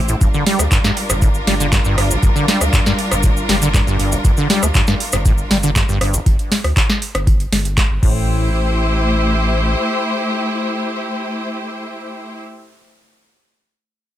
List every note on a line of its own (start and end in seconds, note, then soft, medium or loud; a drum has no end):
0.00 0.15 A1 medium
0.00 0.17 A3 medium
0.00 0.17 E4 medium
0.00 0.17 G4 medium
0.00 0.17 C5 medium
0.08 0.16 A2 medium
0.08 closed hi-hat soft
0.08 cabasa medium
0.21 0.30 G1 loud
0.21 0.28 G2 medium
0.21 6.23 G3 medium
0.21 6.23 D4 medium
0.21 6.22 F4 medium
0.21 6.22 A#4 medium
0.21 kick loud
0.21 closed hi-hat medium
0.21 cabasa medium
0.34 0.44 D3 loud
0.34 cabasa soft
0.46 0.61 G3 loud
0.46 snare medium
0.46 open hi-hat loud
0.59 0.68 D2 medium
0.59 0.63 A#3 loud
0.59 cross-stick medium
0.59 closed hi-hat medium
0.59 cabasa medium
0.72 0.79 G2 loud
0.72 kick loud
0.72 clap loud
0.72 closed hi-hat medium
0.72 cabasa medium
0.84 0.91 G2 loud
0.84 snare medium
0.84 cabasa soft
0.97 open hi-hat loud
1.10 1.41 G1 medium
1.10 1.14 G2 medium
1.10 cross-stick medium
1.10 closed hi-hat soft
1.10 cabasa medium
1.22 1.29 A2 medium
1.22 kick loud
1.22 closed hi-hat medium
1.22 cabasa medium
1.34 cabasa soft
1.47 1.78 G1 medium
1.47 1.55 G3 loud
1.47 snare medium
1.47 open hi-hat loud
1.60 1.67 D3 loud
1.60 closed hi-hat medium
1.60 cabasa medium
1.72 1.80 G2 loud
1.72 kick loud
1.72 snare medium
1.72 clap loud
1.72 closed hi-hat medium
1.72 cabasa medium
1.85 2.16 G1 medium
1.85 1.96 G2 loud
1.85 cabasa soft
1.98 2.12 G2 medium
1.98 cross-stick medium
1.98 open hi-hat loud
2.11 2.17 G1 loud
2.11 closed hi-hat medium
2.11 cabasa medium
2.23 2.31 G1 loud
2.23 2.30 G2 medium
2.23 kick loud
2.23 closed hi-hat medium
2.23 cabasa medium
2.36 2.46 D3 loud
2.36 cabasa soft
2.48 2.62 G3 loud
2.48 snare medium
2.48 open hi-hat loud
2.61 2.69 D2 medium
2.61 2.65 A#3 loud
2.61 cross-stick medium
2.61 closed hi-hat medium
2.61 cabasa medium
2.73 2.80 G2 loud
2.73 kick loud
2.73 clap loud
2.73 closed hi-hat medium
2.73 cabasa medium
2.86 2.93 G2 loud
2.86 snare medium
2.86 cabasa soft
2.99 open hi-hat loud
3.11 3.42 G1 medium
3.11 3.16 G2 medium
3.11 cross-stick medium
3.11 closed hi-hat medium
3.11 cabasa medium
3.23 3.31 A2 medium
3.23 kick loud
3.23 closed hi-hat medium
3.23 cabasa medium
3.37 cabasa soft
3.49 3.80 G1 medium
3.49 3.56 G3 loud
3.49 snare medium
3.49 open hi-hat loud
3.62 3.69 D3 loud
3.62 closed hi-hat medium
3.62 cabasa medium
3.74 3.81 G2 loud
3.74 kick loud
3.74 snare medium
3.74 clap loud
3.74 closed hi-hat medium
3.74 cabasa medium
3.87 4.18 G1 medium
3.87 3.97 G2 loud
3.87 cabasa soft
3.99 4.14 G2 medium
3.99 open hi-hat loud
4.12 4.19 G1 loud
4.12 closed hi-hat medium
4.12 cabasa medium
4.25 4.33 G1 loud
4.25 4.32 G2 medium
4.25 kick loud
4.25 closed hi-hat medium
4.25 cabasa medium
4.37 4.48 D3 loud
4.37 cabasa soft
4.50 4.64 G3 loud
4.50 snare medium
4.50 open hi-hat loud
4.63 4.71 D2 medium
4.63 4.67 A#3 loud
4.63 cross-stick medium
4.63 closed hi-hat medium
4.63 cabasa medium
4.74 4.82 G2 loud
4.74 kick loud
4.74 clap loud
4.74 closed hi-hat medium
4.74 cabasa medium
4.87 4.95 G2 loud
4.87 snare medium
4.87 cabasa soft
5.00 open hi-hat loud
5.12 5.44 G1 medium
5.12 5.17 G2 medium
5.12 cross-stick medium
5.12 closed hi-hat medium
5.12 cabasa medium
5.25 5.33 A2 medium
5.25 kick loud
5.25 closed hi-hat medium
5.25 cabasa medium
5.38 cabasa soft
5.51 5.82 G1 medium
5.51 5.58 G3 loud
5.51 snare medium
5.51 open hi-hat loud
5.63 5.70 D3 loud
5.63 closed hi-hat medium
5.63 cabasa medium
5.76 5.83 G2 loud
5.76 kick loud
5.76 snare medium
5.76 clap loud
5.76 closed hi-hat medium
5.76 cabasa medium
5.89 6.20 G1 medium
5.89 5.99 G2 loud
5.89 cabasa soft
6.01 6.15 G2 medium
6.01 cross-stick medium
6.01 open hi-hat loud
6.14 6.21 G1 loud
6.14 closed hi-hat medium
6.14 cabasa medium
6.26 6.35 G1 loud
6.26 kick loud
6.26 closed hi-hat medium
6.39 closed hi-hat soft
6.52 snare medium
6.52 open hi-hat loud
6.64 6.73 D2 medium
6.64 cross-stick medium
6.64 open hi-hat medium
6.77 kick loud
6.77 clap loud
6.77 closed hi-hat medium
6.90 snare medium
7.02 open hi-hat loud
7.15 7.46 G1 medium
7.15 cross-stick medium
7.15 closed hi-hat medium
7.27 kick loud
7.27 closed hi-hat medium
7.40 closed hi-hat soft
7.52 7.84 G1 medium
7.52 snare medium
7.52 open hi-hat loud
7.65 closed hi-hat medium
7.78 kick loud
7.78 snare medium
7.78 clap loud
7.78 closed hi-hat medium
7.90 7.99 G1 loud
8.03 9.75 A1 loud
8.03 8.50 A2 loud
8.03 12.39 A3 medium
8.03 12.40 E4 medium
8.03 12.40 G4 medium
8.03 12.40 C5 medium
8.03 kick loud
8.03 crash medium